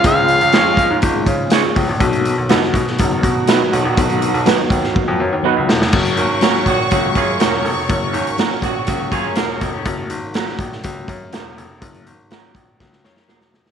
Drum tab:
CC |----------------|----------------|----------------|x---------------|
HH |x-xxx-x-x-x-x-o-|xxx-x-x-x-x-x-x-|xxxxx-x---------|-xx-x-x-x-x-x-o-|
SD |----o-------o---|----oo-o----o---|----o--o------oo|----oo------o---|
BD |o-----o-o-o---o-|o-----o-o-o-----|o-----o-o-------|o-----o-o-o-----|

CC |----------------|----------------|----------------|
HH |x-xxx-x-x-x-x-x-|x-x-x-x-x-x-x-x-|xxx-x-x---------|
SD |----oo------o---|----oo-o----o---|----o---oooooooo|
BD |o-----o-o-o---o-|o-----o-o-o-----|o-----o-o-------|